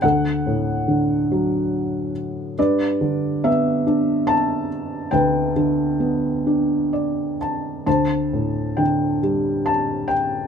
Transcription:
felt piano
0.02 D2 A4 F#5
0.47 A2
0.88 D3
1.31 F#3
2.58 G2 B4 D5
3.01 D3
3.44 B3 E5
3.87 D4
4.27 A5
5.11 D2 B4 G5
5.56 D3
6.00 B3
6.47 D4
6.93 D5
7.41 A5
7.87 D2 C5 A5
8.33 A2
8.77 D3 G5
9.23 G3
9.66 A5
10.08 G5

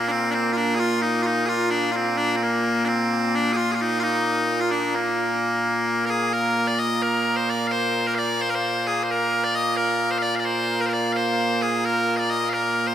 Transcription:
bagpipes
Already playing: A#2 A#3
0.08 C4 D4
0.31 C4 D4
0.53 F4
0.57 D4
0.75 G#4
0.80 F4
1.01 D#4
1.23 D#4 F4
1.46 F4 G#4
1.70 D4
1.92 F4
1.96 C4
2.17 D4
2.36 C4
2.43 A#3
2.85 C4 D4
3.35 D4
3.53 G#4
3.57 F4
3.72 F4 G#4
3.81 D#4
3.99 D#4 F4
4.61 F4
4.71 D4
4.95 A#3
6.06 A#4
6.10 G#4
6.33 A#4
6.67 D5
6.79 D#5
7.02 A#4
7.36 C5
7.50 D5
7.67 F5
7.71 C5
8.07 A#4
8.15 D5 F5
8.41 C5
8.50 A#4
8.55 C5
8.87 G#4
9.03 C5
9.10 A#4
9.44 D5
9.55 D#5
9.77 A#4
10.11 C5
10.18 F5
10.22 D5
10.36 F5
10.40 D5
10.45 C5
10.81 A#4
10.86 A#4 C5
10.93 D5
11.13 C5 F5
11.62 G#4
11.85 A#4
12.17 D5 D#5
12.30 D#5
12.49 F5
12.53 A#4
12.87 C5

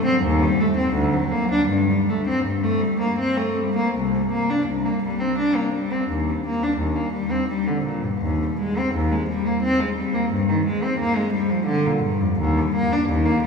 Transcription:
cello
0.05 C4
0.23 D#2
0.42 G3
0.60 A3
0.77 C4
0.93 D2
1.13 F#3
1.32 A#3
1.51 D4
1.68 G2
1.90 G3
2.09 A3
2.28 C4
2.45 G2
2.64 A3
2.82 G3
3.00 A#3
3.19 C4
3.37 A3
3.57 G3
3.76 A#3
3.96 C2
4.16 G3
4.32 A#3
4.50 D4
4.68 C2
4.85 A#3
5.03 G3
5.20 C4
5.38 D4
5.56 A#3
5.74 G3
5.92 C4
6.10 D#2
6.29 G3
6.47 A#3
6.63 D4
6.79 D#2
6.96 A#3
7.13 G3
7.30 C4
7.49 G3
7.67 D3
7.84 A#2
8.03 G2
8.22 D#2
8.43 G3
8.60 G#3
8.78 C4
8.95 D#2
9.12 G#3
9.29 G3
9.47 A#3
9.63 C4
9.80 G#3
9.96 G3
10.14 A#3
10.31 G2
10.49 D#3
10.66 G#3
10.83 C4
11.00 A#3
11.16 G#3
11.33 G3
11.50 F3
11.66 D3
11.86 A#2
12.03 G2
12.20 F2
12.39 D#2
12.58 G3
12.76 A#3
12.93 D4
13.09 D#2
13.26 A#3
13.43 G3

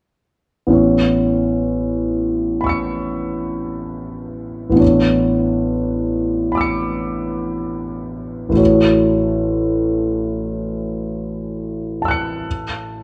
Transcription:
grand piano
0.67 A1 B3 C#4 E4
0.73 C#5
2.61 B5 C#6
2.67 E6 C#7
4.70 A1 B3
4.75 D4 E4
4.79 C#5
6.52 B5 D6
6.57 E6 C#7
8.49 A1 A3
8.54 E4 F#4 C#5
12.02 A5 E6
12.08 F#6 C#7

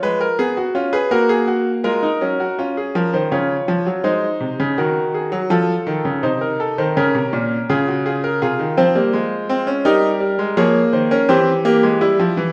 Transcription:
grand piano
Already playing: F4
0.03 G#3 B4
0.21 A#4
0.39 B3 G#4
0.57 F#4
0.75 C#4 F4
0.93 G#4 B4
1.11 A#3 F#4 A#4
1.29 G#4
1.48 F#4
1.84 G#3 F4 A#4
2.03 D#4
2.21 F#3 C#4
2.40 F#4
2.59 C#4 F4
2.77 G#4
2.95 F3 A#4
3.14 D#3 C5
3.32 C#3 F4 C#5
3.68 F3
3.86 F#3
4.04 G#3 D#4 C5
4.41 C3
4.60 C#3
4.78 D#3 F#4 A#4
5.14 G#4
5.32 F#3
5.50 F3 F4 A4
5.87 D#3
6.05 C#3
6.23 C3 D#4 C5
6.41 A#4
6.60 A4
6.78 D#3 C5
6.97 C#3 C#4 A#4
7.15 C3
7.33 A#2
7.70 C#3 F4 G#4
7.88 F#4
8.06 F4 G#4
8.24 A#4
8.42 C3 F4 G#4
8.59 D#3
8.77 F3 C4 C5
8.95 G3 A#3
9.13 G#3
9.49 C4
9.67 C#4
9.85 G3 D#4 G4 A#4
10.20 G3
10.39 G#3
10.57 F3 A#3 G#4 C#5
10.93 D#3 C5
11.11 C#4 A#4
11.29 E3 C4 G4 C5
11.65 A#3 G4
11.83 G#3
12.01 G3 E4
12.19 F3
12.37 E3

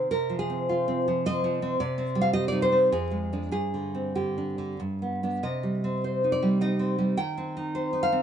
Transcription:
nylon-string guitar
0.11 C3 A#4
0.29 F3
0.39 G#4
0.50 C4
0.69 F4
0.88 C4
1.08 F3
1.26 C4 D#5
1.44 F3
1.62 C4
1.80 C3 D5
1.98 C4
2.15 G3
2.21 F5
2.33 G4 D#5
2.48 D5
2.52 D#4
2.62 C5
2.72 C4
2.92 F2 G#4
3.11 G#3
3.33 G#3 D4
3.51 G2 G#4
3.74 D3
3.95 C4
4.15 D3 G4
4.38 D4
4.58 D3
4.80 G2
5.02 B3
5.23 B3 D4
5.43 C3 D#5
5.63 G3
5.84 C4
6.04 C5
6.24 D#4
6.32 D5
6.43 G3
6.61 D#4 D#5
6.79 C4
6.98 G3
7.17 D#3 G5
7.37 C4
7.57 D#4
7.75 C5
7.93 D#4
8.03 F5
8.12 C4

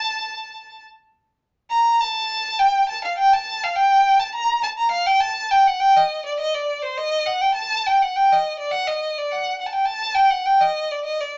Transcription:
violin
Already playing: A5
1.70 A#5
2.01 A5
2.59 G5
2.89 A5
3.05 F5
3.18 G5
3.33 A5
3.64 F5
3.76 G5
4.20 A5
4.35 A#5
4.63 A5
4.78 A#5
4.91 F5
5.06 G5
5.20 A5
5.51 G5
5.67 F#5
5.80 G5
5.97 D#5
6.26 D5
6.40 D#5
6.54 D5
6.82 C5
6.98 D#5
7.26 F#5
7.41 G5
7.54 A5
7.86 G5
8.02 F#5
8.16 G5
8.33 D#5
8.59 D5
8.71 F#5
8.87 D#5
9.18 D5
9.32 F#5
9.61 F#5
9.66 A5
9.73 G5
9.85 A5
10.15 G5
10.30 F#5
10.46 G5
10.61 D#5
10.91 D5
11.05 D#5
11.21 D5

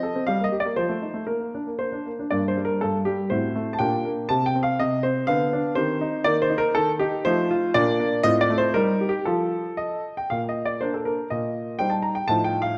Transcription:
grand piano
Already playing: D#5
0.03 A4
0.15 C4
0.27 G3 F5
0.40 A#3 D#5
0.52 G4
0.60 D5
0.65 A#3
0.76 F3 C5
0.89 A3
1.02 D#4
1.14 A3
1.27 A#3 A#4
1.40 A#3
1.55 D4
1.67 A#3
1.79 A#3 C5
1.92 D4
2.06 A#3
2.19 D4
2.31 G2 A#3 D4 D5
2.48 C5
2.57 G3
2.65 A#4
2.81 G2 A4
3.05 G3 G4
3.30 A2 C4 F#4 C5
3.56 A3
3.73 A5
3.79 A#2 D4 G4 G5
4.05 A#3
4.29 C3 C4 G4 A5
4.46 G5
4.55 C4
4.63 F5
4.79 C3 D#5
5.03 C4 C5
5.27 D3 B3 B4 F5
5.53 D4
5.75 D#3 C4 G4 C5
6.01 D#4
6.24 D#3 A#3 D#4 D5
6.42 C5
6.50 D#4
6.58 A#4
6.75 D#3 A4
6.99 D#4 G4
7.25 F3 A3 D#4 C5
7.51 F4
7.74 A#2 A#3 D4 D5
8.00 A#3
8.23 A2 C4 F4 D#5
8.41 D5
8.50 A3
8.58 C5
8.74 G3 D#4 G4 A#4
9.01 G4
9.09 G4
9.25 F3 F4 A4
9.77 D#5
10.17 G5
10.30 A#2 F5
10.49 D#5
10.65 D5
10.81 A#3 D4 A#4 C5
10.94 A4
11.05 A#4
11.30 A#2 D#5
11.79 G3 D#4 C5 G5
11.90 A5
12.02 A#5
12.15 G5
12.28 A2 F3 D#4 C5 A5
12.44 G5
12.62 F5

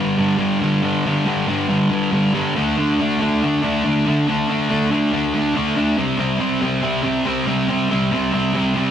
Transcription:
distorted electric guitar
Already playing: G2 D3
0.00 G3
0.17 G2 D3 G3
0.37 G2 D3 G3
0.60 G2 D3 G3
0.82 G2 D3 G3
1.04 G2 D3 G3
1.25 G2 D3 G3
1.47 G2 D3 G3
1.68 G2 D3 G3
1.89 G2 D3 G3
2.11 G2 D3 G3
2.33 G2 D3 G3
2.55 D3 A3 D4
2.77 D3 A3 D4
2.99 D3 A3 D4
3.19 D3 A3 D4
3.42 D3 A3 D4
3.63 D3 A3 D4
3.84 D3 A3 D4
4.06 D3 A3 D4
4.27 D3 A3 D4
4.48 D3 A3 D4
4.69 D3 A3 D4
4.90 D3 A3 D4
5.12 D3 A3 D4
5.33 D3 A3 D4
5.54 D3 A3 D4
5.75 D3 A3 D4
5.97 C3 G3 C4
6.18 C3 G3 C4
6.39 C3 G3 C4
6.61 C3 G3 C4
6.81 C3 G3 C4
7.03 C3 G3 C4
7.26 C3 G3 C4
7.46 C3 G3 C4
7.68 C3 G3 C4
7.89 C3 G3 C4
8.12 C3 G3 C4
8.32 C3 G3 C4
8.53 C3 G3 C4
8.74 C3 G3 C4

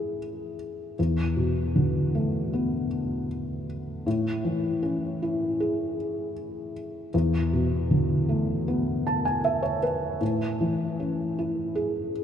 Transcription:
felt piano
Already playing: A2 E3 C#4 E4 G#4
0.99 E2
1.37 B2
1.76 D3
2.15 A3
2.53 B3
4.06 A2
4.45 E3
4.83 C#4
5.22 E4
5.60 G#4
7.14 E2
7.53 B2
7.91 D3
8.29 A3
8.68 B3
9.07 A5
9.25 G#5
9.45 E5
9.63 C#5
9.83 B4
10.21 A2
10.61 E3
11.00 C#4
11.39 E4
11.75 G#4

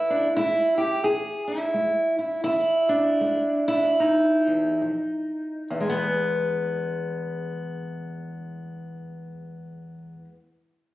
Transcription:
steel-string acoustic guitar
Already playing: E2 E4
0.10 D4
0.37 G#3 E4
0.78 G4
1.04 E2 G#4
1.48 E4
1.74 G#3
2.19 E4
2.44 E2 E4
2.89 D4
3.21 G#3
3.68 E4
4.00 D#4
4.47 E2
4.82 F3
5.70 E2
5.80 G#3
5.90 B3

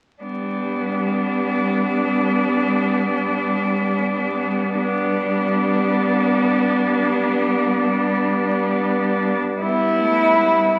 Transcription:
cello
0.22 G2 G3 B3 D4
4.79 G2 G3 B3 D4
9.59 G2 G3 B3 E4
10.01 A3
10.41 G3

